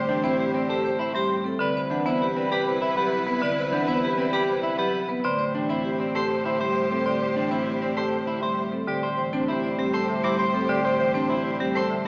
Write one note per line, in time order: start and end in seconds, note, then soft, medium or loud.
0.00 1.51 A2 medium
0.00 1.41 G4 medium
0.00 0.14 C5 medium
0.00 1.42 C5 medium
0.09 0.29 E3 medium
0.09 0.29 D4 medium
0.09 0.20 C5 medium
0.09 0.29 G5 medium
0.24 0.44 C4 medium
0.24 0.44 E4 medium
0.24 0.35 C5 medium
0.24 0.44 C5 medium
0.39 0.59 G4 medium
0.39 0.50 C5 medium
0.54 0.74 C4 medium
0.54 0.65 C5 medium
0.54 0.74 D5 medium
0.69 0.89 G4 medium
0.69 0.89 A4 medium
0.69 0.80 C5 medium
0.84 0.95 C5 medium
0.84 1.05 C5 medium
0.99 1.14 E4 medium
0.99 1.10 C5 soft
0.99 1.20 E5 medium
1.15 1.35 G3 medium
1.15 1.35 G4 medium
1.15 1.35 C5 medium
1.15 1.26 C5 soft
1.30 1.40 C5 soft
1.44 1.65 C4 medium
1.44 1.65 A4 medium
1.59 5.14 C2 medium
1.59 1.80 D3 medium
1.59 5.05 E4 medium
1.59 1.71 B4 soft
1.59 1.80 B4 medium
1.59 5.05 B4 medium
1.59 1.81 D5 medium
1.75 1.86 B4 soft
1.75 1.96 C5 medium
1.90 2.10 E3 medium
1.90 2.10 D4 medium
1.90 2.01 B4 medium
1.90 2.11 F#5 medium
2.06 2.26 B3 medium
2.06 2.26 E4 medium
2.06 2.17 B4 medium
2.06 2.26 C5 medium
2.21 2.41 G4 medium
2.21 2.31 B4 medium
2.36 2.56 C4 medium
2.36 2.47 B4 medium
2.36 2.56 D5 medium
2.51 2.71 G4 medium
2.51 2.62 B4 medium
2.51 2.63 B5 medium
2.66 2.77 B4 medium
2.66 2.86 C5 medium
2.81 2.97 E4 medium
2.81 2.92 B4 medium
2.81 3.02 E5 medium
2.97 3.16 F#3 medium
2.97 3.17 G4 medium
2.97 3.07 B4 medium
2.97 3.17 B4 medium
3.12 3.23 B4 medium
3.27 3.47 B3 medium
3.27 3.38 B4 medium
3.27 3.47 B4 medium
3.42 3.62 D3 medium
3.42 3.62 B4 medium
3.42 3.53 B4 medium
3.42 3.62 D5 loud
3.58 3.69 B4 medium
3.58 3.77 C5 medium
3.72 3.92 E3 medium
3.72 3.92 D4 medium
3.72 3.84 B4 medium
3.72 3.93 F#5 medium
3.88 4.07 B3 medium
3.88 4.08 E4 medium
3.88 3.99 B4 medium
3.88 4.08 C5 medium
4.04 4.23 G4 medium
4.04 4.15 B4 medium
4.18 4.38 C4 medium
4.18 4.30 B4 medium
4.18 4.38 D5 medium
4.33 4.53 G4 medium
4.33 4.44 B4 medium
4.33 4.44 B5 medium
4.48 4.60 B4 medium
4.48 4.68 C5 medium
4.63 4.78 E4 medium
4.63 4.74 B4 medium
4.63 4.83 E5 medium
4.79 4.98 F#3 medium
4.79 4.98 G4 medium
4.79 4.98 B4 medium
4.79 4.90 B4 soft
4.95 5.05 B4 soft
5.09 5.29 B3 medium
5.09 5.29 B4 medium
5.23 8.78 A2 medium
5.23 5.44 D3 medium
5.23 8.68 G4 medium
5.23 8.68 C5 medium
5.23 5.44 C5 medium
5.23 5.35 C5 soft
5.23 5.44 D5 medium
5.39 5.59 C5 medium
5.39 5.51 C5 soft
5.54 5.74 E3 medium
5.54 5.74 D4 medium
5.54 5.65 C5 soft
5.54 5.74 G5 medium
5.69 5.89 C4 medium
5.69 5.89 E4 medium
5.69 5.89 C5 medium
5.69 5.80 C5 soft
5.85 6.04 G4 medium
5.85 5.96 C5 medium
6.00 6.20 C4 medium
6.00 6.11 C5 medium
6.00 6.20 D5 medium
6.15 6.35 G4 medium
6.15 6.35 A4 medium
6.15 6.26 C5 medium
6.15 6.27 C6 medium
6.30 6.50 C5 medium
6.30 6.41 C5 medium
6.45 6.65 D3 medium
6.45 6.60 E4 medium
6.45 6.56 C5 medium
6.45 6.65 E5 medium
6.60 6.80 G3 medium
6.60 6.80 G4 medium
6.60 6.80 C5 medium
6.60 6.71 C5 medium
6.76 6.86 C5 medium
6.76 6.95 E5 medium
6.91 7.11 C4 medium
6.91 7.11 A4 medium
6.91 7.02 C5 medium
7.06 7.25 D3 medium
7.06 7.26 C5 medium
7.06 7.17 C5 medium
7.06 7.26 D5 medium
7.21 7.41 C5 medium
7.21 7.32 C5 medium
7.36 7.56 E3 medium
7.36 7.56 D4 medium
7.36 7.47 C5 medium
7.36 7.56 G5 medium
7.51 7.71 C4 medium
7.51 7.71 E4 medium
7.51 7.71 C5 medium
7.51 7.62 C5 medium
7.66 7.86 G4 soft
7.66 7.77 C5 medium
7.82 8.01 C4 medium
7.82 7.92 C5 medium
7.82 8.01 D5 medium
7.97 8.17 G4 medium
7.97 8.17 A4 medium
7.97 8.08 C5 medium
7.97 8.08 C6 medium
8.12 8.32 C5 medium
8.12 8.23 C5 soft
8.27 8.47 D3 medium
8.27 8.42 E4 medium
8.27 8.38 C5 soft
8.27 8.47 E5 medium
8.43 8.62 G3 medium
8.43 8.62 G4 medium
8.43 8.62 C5 medium
8.43 8.53 C5 soft
8.57 8.68 C5 soft
8.57 8.78 E5 medium
8.72 8.92 C4 medium
8.72 8.93 A4 medium
8.88 12.08 A2 medium
8.88 9.07 D3 medium
8.88 9.07 G4 medium
8.88 12.08 G4 medium
8.88 12.08 C5 medium
8.88 8.99 C5 soft
8.88 9.08 D5 medium
9.02 9.13 C5 soft
9.02 9.23 C5 medium
9.18 9.38 E3 medium
9.18 9.28 C5 medium
9.18 9.38 G5 medium
9.33 9.53 C4 medium
9.33 9.53 D4 medium
9.33 9.53 C5 medium
9.33 9.44 C5 soft
9.48 9.68 E4 medium
9.48 9.68 G4 medium
9.48 9.59 C5 medium
9.64 9.74 C5 medium
9.64 9.83 D5 medium
9.79 9.98 G3 medium
9.79 9.98 C4 medium
9.79 9.98 G4 medium
9.79 9.89 C5 medium
9.93 10.14 A4 medium
9.93 10.04 C5 medium
9.93 10.14 C5 medium
9.93 10.05 C6 medium
10.08 10.29 D3 medium
10.08 10.19 C5 medium
10.08 10.29 E5 medium
10.24 10.44 G3 medium
10.24 10.39 E4 medium
10.24 10.44 G4 medium
10.24 10.35 C5 medium
10.24 10.35 D6 medium
10.39 10.49 C5 medium
10.39 10.59 C5 medium
10.39 10.59 E5 medium
10.54 10.74 C4 medium
10.54 10.74 A4 medium
10.54 10.65 C5 medium
10.69 10.89 D3 medium
10.69 10.89 G4 medium
10.69 10.80 C5 medium
10.69 10.89 D5 medium
10.84 10.95 C5 medium
10.84 11.04 C5 medium
10.99 11.20 E3 medium
10.99 11.10 C5 medium
10.99 11.19 G5 medium
11.14 11.35 C4 medium
11.14 11.35 D4 medium
11.14 11.25 C5 medium
11.14 11.35 C5 medium
11.30 11.50 E4 medium
11.30 11.50 G4 medium
11.30 11.40 C5 medium
11.44 11.55 C5 medium
11.44 11.65 D5 medium
11.60 11.80 G3 medium
11.60 11.80 C4 medium
11.60 11.80 G4 medium
11.60 11.71 C5 medium
11.75 11.95 A4 medium
11.75 11.86 C5 medium
11.75 11.95 C5 medium
11.75 11.87 C6 medium
11.90 12.08 D3 medium
11.90 12.01 C5 soft
11.90 12.08 E5 medium